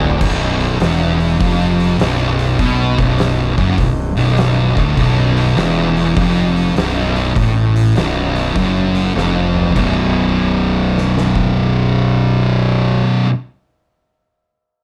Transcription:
Already playing: fingered electric bass D1, distorted electric guitar D2
0.01 floor tom
0.11 floor tom
0.21 fingered electric bass B0, distorted electric guitar B1, kick, crash
0.60 open hi-hat
0.80 fingered electric bass E1, distorted electric guitar E2, snare, open hi-hat
1.20 open hi-hat
1.39 fingered electric bass F1, distorted electric guitar F2, kick, open hi-hat
1.80 open hi-hat
1.98 fingered electric bass B0, distorted electric guitar B1, snare, open hi-hat
2.39 open hi-hat
2.59 fingered electric bass B1, distorted electric guitar B2, kick, open hi-hat
2.98 fingered electric bass B0, distorted electric guitar B1, kick, open hi-hat
3.18 snare, open hi-hat
3.57 fingered electric bass F#1, distorted electric guitar F#2, kick, open hi-hat
3.78 fingered electric bass B0, distorted electric guitar B1, kick, open hi-hat
4.17 fingered electric bass B0, distorted electric guitar B1, open hi-hat
4.37 snare, open hi-hat
4.76 fingered electric bass D1, distorted electric guitar D2, kick, open hi-hat
4.97 fingered electric bass B0, distorted electric guitar B1, kick, open hi-hat
5.37 open hi-hat
5.57 fingered electric bass E1, distorted electric guitar E2, snare, open hi-hat
5.97 open hi-hat
6.16 fingered electric bass F1, distorted electric guitar F2, kick, open hi-hat
6.56 open hi-hat
6.76 fingered electric bass B0, distorted electric guitar B1, snare, open hi-hat
7.16 open hi-hat
7.35 fingered electric bass A1, distorted electric guitar A2, kick, open hi-hat
7.76 open hi-hat
7.96 fingered electric bass B0, distorted electric guitar B1, snare, open hi-hat
8.36 open hi-hat
8.56 fingered electric bass F#1, distorted electric guitar F#2, kick, open hi-hat
8.95 open hi-hat
9.15 fingered electric bass F1, distorted electric guitar F2, snare
9.56 mid tom
9.66 floor tom
9.73 fingered electric bass B0, distorted electric guitar B1 F#2 B2, kick, crash
10.98 snare
11.18 snare
11.36 kick

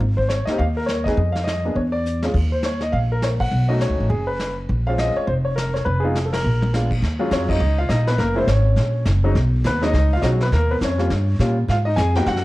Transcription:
0.00 upright bass G#1, brush sweep, kick
0.17 grand piano C5, kick
0.29 grand piano C#5, snare, hi-hat pedal
0.45 grand piano A#3 C4 D#4 D#5, muted upright bass stroke, snare
0.50 grand piano G4
0.58 upright bass D#2, grand piano F5, brush sweep, kick
0.77 grand piano A#4
0.86 grand piano C#5, snare, hi-hat pedal
1.04 grand piano G#3 B3 D#4 D#5, kick, snare
1.08 grand piano G#4
1.17 upright bass F2, brush sweep, kick
1.32 grand piano F5, snare
1.44 grand piano D#5, snare, hi-hat pedal
1.65 grand piano A#3 B3 D4 G#4
1.75 upright bass E2, grand piano C#5, brush sweep, kick
1.92 grand piano D5
2.06 hi-hat pedal
2.23 grand piano G#3 C#4 F4 G#4, snare
2.34 upright bass D#2, brush sweep, kick, ride
2.52 grand piano C5
2.63 grand piano C#5, snare, hi-hat pedal
2.81 grand piano D#5, snare
2.92 upright bass A#1, grand piano F5, brush sweep, kick
3.12 grand piano A#4
3.22 grand piano C#5, snare, hi-hat pedal
3.40 grand piano F#5, kick, ride
3.51 upright bass B1, brush sweep
3.68 grand piano A3 C#4 D#4 F#4 D#5
3.81 grand piano C#5, snare, hi-hat pedal
3.90 upright bass C#2
4.00 upright bass A1
4.09 upright bass F#1, grand piano G#4, brush sweep, kick
4.27 grand piano B4
4.40 snare, hi-hat pedal
4.69 upright bass A#1, brush sweep, kick
4.87 grand piano G#3 C4 C#4 F4 F5
4.98 grand piano D#5, snare, hi-hat pedal
5.16 grand piano C#5, muted upright bass stroke
5.27 upright bass F1, grand piano C5, brush sweep, kick
5.45 grand piano C#5
5.56 grand piano A#4, snare, hi-hat pedal
5.74 grand piano C#5, snare
5.85 upright bass F1, grand piano B4, brush sweep, kick
6.00 grand piano G#3 B3 G#4
6.04 grand piano D#4 F4
6.15 snare, hi-hat pedal
6.26 grand piano A4
6.33 grand piano A#4, snare, ride
6.44 upright bass A#1
6.62 high tom
6.73 grand piano G#3 B3 D4 F4, snare, hi-hat pedal
6.91 kick, crash
7.02 upright bass D#2, brush sweep, kick, snare
7.19 grand piano F#3 G#3 C#4 F4
7.31 upright bass F2, grand piano C#5, kick, snare, hi-hat pedal
7.35 grand piano C#4
7.49 grand piano D#4 D#5, kick, crash
7.60 upright bass C#2, brush sweep
7.79 grand piano F4 F5
7.89 upright bass A#1, grand piano D#4 D#5, kick, snare, hi-hat pedal
8.07 grand piano B3 B4, snare
8.18 upright bass F#1, grand piano A#3 A#4, brush sweep, kick, snare
8.35 grand piano G#3 A#3 C#4 E4 C5
8.39 grand piano C4
8.47 upright bass G#1, grand piano C#4 C#5, kick, snare, hi-hat pedal
8.76 upright bass A#1, brush sweep, kick, snare
9.06 upright bass F#1, kick, snare, hi-hat pedal
9.24 grand piano F#3 G#3 C#4 D#4
9.35 upright bass B1, brush sweep, kick, snare
9.64 upright bass D#2, grand piano B4, kick, snare, hi-hat pedal
9.69 grand piano B3
9.81 grand piano F#3 G#3 C#4 D#4 D#5, snare
9.86 grand piano D#4
9.93 upright bass C#2, brush sweep, kick, snare
10.13 grand piano F4 F5
10.22 upright bass B1, grand piano F#3 G#3 C#4 D#4 F#4 D#5, kick, snare, hi-hat pedal
10.41 grand piano B4, snare
10.45 grand piano B3
10.52 upright bass D#2, grand piano A#3 A#4, brush sweep, kick, snare
10.71 grand piano B3 B4
10.81 upright bass F2, grand piano C#5, kick, snare, hi-hat pedal
10.85 grand piano C#4
10.98 grand piano G3 A#3 C#4 F4, snare
11.10 upright bass G2, brush sweep, kick, snare
11.39 upright bass A#2, grand piano G3 A#3 C#4 F4, kick, snare, hi-hat pedal
11.68 upright bass G#2, grand piano F4 F5, brush sweep, kick, snare
11.85 grand piano D#4 D#5
11.96 upright bass F2, grand piano G#4 G#5, kick, snare, hi-hat pedal
12.15 grand piano A#3 B3 D#4 F#4 G4 G5, snare
12.26 upright bass F#2, grand piano F#5, brush sweep, kick, snare
12.30 grand piano F#4
12.36 snare

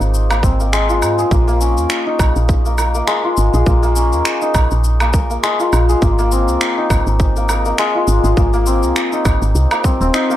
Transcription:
Already playing: santur A#3 C4 D#4 F4 G#4
0.01 fm bass G#1, cabasa
0.14 cabasa
0.30 santur A#3, finger snap, cabasa, low woodblock
0.43 fm bass G#1, santur C4, kick, cabasa
0.60 santur A#3, cabasa
0.73 santur G#3, finger snap, cabasa
0.89 santur F4, cabasa
1.02 fm bass G#2, cabasa, low woodblock
1.18 santur G#4, cabasa
1.31 fm bass A#1, santur A#3, kick, cabasa
1.48 santur A#3, cabasa
1.61 santur C#4, cabasa
1.77 fm bass D#2, cabasa
1.90 finger snap, cabasa
2.06 santur D#4
2.19 fm bass A#1, kick, cabasa, low woodblock
2.36 fm bass A#1, cabasa
2.49 kick, cabasa
2.65 santur A#3, cabasa
2.78 santur A#4, cabasa, low woodblock
2.95 santur A#3, cabasa
3.07 santur G#3, finger snap, cabasa
3.24 santur F4
3.37 fm bass G#1, cabasa
3.54 fm bass A#1, santur G#4, cabasa
3.66 fm bass A#1, santur A#3, kick, cabasa
3.83 santur A#3, cabasa
3.96 santur C#4, cabasa
4.13 fm bass D#2, cabasa
4.25 finger snap, cabasa
4.42 santur D#4, cabasa
4.55 fm bass A#1, kick, cabasa, low woodblock
4.71 fm bass A#1, cabasa
4.84 cabasa
5.00 santur A#3, finger snap, cabasa, low woodblock
5.14 santur A#4, kick, cabasa
5.30 santur A#3, cabasa
5.43 santur G#3, finger snap, cabasa
5.59 santur F4, cabasa
5.73 fm bass A#1, cabasa, low woodblock
5.89 santur G#4, cabasa
6.02 fm bass G#1, santur A#3, kick, cabasa
6.19 santur A#3, cabasa
6.32 santur C4, cabasa
6.48 fm bass C2, cabasa
6.61 finger snap, cabasa
6.78 santur D#4
6.90 fm bass G#1, kick, cabasa, low woodblock
7.07 fm bass G#1, cabasa
7.20 kick, cabasa
7.36 santur A#3, cabasa
7.49 santur A#4, cabasa, low woodblock
7.65 santur A#3, cabasa
7.78 santur G#3, finger snap, cabasa
7.95 santur F4
8.08 fm bass G#1, cabasa
8.24 fm bass G#1, santur G#4, cabasa
8.37 fm bass G#1, santur A#3, kick, cabasa
8.53 santur A#3, cabasa
8.66 santur C4, cabasa
8.83 fm bass C2, cabasa
8.96 finger snap, cabasa
9.12 santur D#4, cabasa
9.25 fm bass G#1, kick, cabasa, low woodblock
9.42 fm bass G#1, cabasa
9.55 fm bass C2, cabasa
9.71 santur A#3, finger snap, cabasa, low woodblock
9.84 santur C4, kick, cabasa
10.01 fm bass D#1, santur C4, cabasa
10.14 santur D#4, finger snap, cabasa
10.30 santur A#3, cabasa

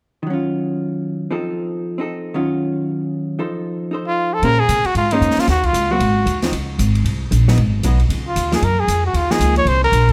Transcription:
0.23 hollow-body jazz guitar D#3 F#3
0.30 hollow-body jazz guitar C#4 F4
1.31 hollow-body jazz guitar F3 C4 D#4 A4
1.98 hollow-body jazz guitar C4 D#4 A4
2.34 hollow-body jazz guitar D#3 F#3 C#4 F4
3.39 hollow-body jazz guitar F3 D#4 A4 C5
3.91 hollow-body jazz guitar D#4 A4 C5
4.07 trumpet F4
4.34 trumpet A4
4.42 upright bass A#2, hollow-body jazz guitar A#3 C#4 G#4 C5, trumpet A#4, ride
4.59 trumpet G#4
4.68 upright bass C3, hi-hat pedal, ride
4.85 trumpet F#4, muted upright bass stroke, ride
4.95 upright bass G#2, trumpet F4, ride
5.11 hollow-body jazz guitar A#3 C#4 G#4 C5, trumpet D#4, ride
5.21 upright bass F2, hi-hat pedal
5.31 snare
5.36 trumpet F4, muted upright bass stroke, snare, ride
5.47 upright bass D#2, trumpet F#4, snare, ride
5.63 trumpet F4, kick, ride
5.73 upright bass C#2, hi-hat pedal, ride
5.91 hollow-body jazz guitar F#3 A#3 C4, trumpet F#4
6.00 upright bass G#1, ride
6.26 upright bass D#2, hi-hat pedal, ride
6.42 hollow-body jazz guitar F3 C4 D#4, snare, ride
6.52 upright bass C#2, ride
6.78 upright bass G#1, hi-hat pedal, ride
6.95 ride
7.04 upright bass C2, ride
7.31 upright bass A#1, hi-hat pedal, ride
7.48 hollow-body jazz guitar F#3 B3 D#4, snare
7.57 upright bass G#1, ride
7.83 upright bass B1, hollow-body jazz guitar F#3 B3 D#4, hi-hat pedal, ride
8.00 ride
8.09 upright bass C#2, ride
8.28 trumpet F4
8.36 upright bass D#2, hi-hat pedal, ride
8.52 hollow-body jazz guitar F3 A#3 D#4, trumpet G#4, snare, ride
8.62 upright bass F#2, trumpet A#4, ride
8.80 trumpet G#4
8.88 upright bass F2, hi-hat pedal, ride
9.06 trumpet F#4
9.13 upright bass D#2, trumpet F4, ride
9.31 hollow-body jazz guitar F3 A#3 D#4, trumpet G#4, snare
9.39 upright bass C#2, hi-hat pedal, ride
9.56 trumpet C#5, ride
9.65 upright bass C2, trumpet C5, ride
9.84 trumpet A#4
9.92 upright bass A#1, hi-hat pedal, ride
10.09 kick, ride

